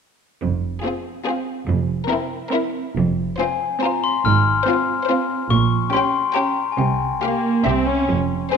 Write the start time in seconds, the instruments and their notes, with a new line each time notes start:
0.41 double bass section F1, cello section F2
0.84 viola section C4, violin section F4 G#4
1.26 viola section C4, violin section F4 G#4
1.67 double bass section F1, cello section F2
2.10 viola section C4, violin section E4 A#4
2.52 viola section C4, violin section E4 A#4
2.97 double bass section F1, cello section F2
3.39 viola section C4, violin section F4 C5, glockenspiel G#5
3.82 viola section C4, violin section F4 C5, glockenspiel A#5
4.04 glockenspiel C6
4.25 double bass section G#1, cello section G#2, glockenspiel F6
4.67 viola section C4, violin section F4 C5
5.09 viola section C4, violin section F4 C5
5.50 double bass section A#1, cello section A#2, glockenspiel C#6
5.93 viola section C#4, violin section G4 G5, glockenspiel C6
6.35 viola section C#4, violin section G4 G5, glockenspiel A#5
6.72 glockenspiel G#5
6.78 double bass section C2, cello section C3, glockenspiel G5
7.23 viola section A#3, violin section G4 F5
7.66 double bass section C2, cello section C3, viola section C4, violin section G4 E5
7.89 viola section C#4
8.09 double bass section F1, cello section F2
8.52 viola section C4, violin section G#4 C5, glockenspiel G#5